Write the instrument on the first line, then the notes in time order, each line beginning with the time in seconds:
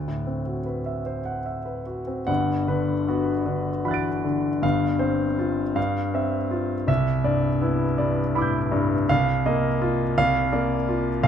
grand piano
Already playing: D2
0.08 A2
0.27 C4
0.47 F#4
0.66 B4
0.86 E5
1.06 C5
1.25 F#5
1.46 E5
1.66 B4
1.86 F#4
2.07 C4
2.27 G1 G2 F#5
2.67 D3 B4
3.08 B3 F#4
3.46 D3 B4
3.85 E3 F#4 B5 F#6
3.91 A6 D7
4.24 D3
4.62 G1 G2 F5
4.99 C4 C5
5.39 F4
5.76 G2 F5
6.14 C4 E5
6.51 F4
6.88 C2 E5
7.24 G2 D5
7.62 B3 E4
7.98 G2 D5
8.35 A2 E4 B5 D6
8.42 G6
8.72 G2
9.09 C2 F5
9.46 A#3 D#5
9.82 F4
10.18 C2 F5
10.53 A#3 D5
10.89 F4
11.23 B1 F5